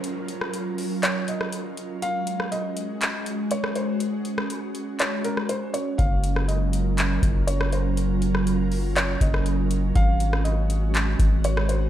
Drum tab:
HH |x-x-x-o-x-x-x-x-|x-x-x-x-x-x-x-x-|x-x-x-x-x-x-x-x-|x-x-x-x-x-x-x-x-|
CP |--------x-------|--------x-------|--------x-------|--------x-------|
SD |---r-------r----|---r---------r--|---r-------r----|---r---------r--|
BD |----------------|----------------|----------------|o---------o-----|

HH |x-x-x-o-x-x-x-x-|x-x-x-x-x-x-x-x-|
CP |--------x-------|--------x-------|
SD |---r-------r----|---r---------r--|
BD |----------o-----|o---------o-----|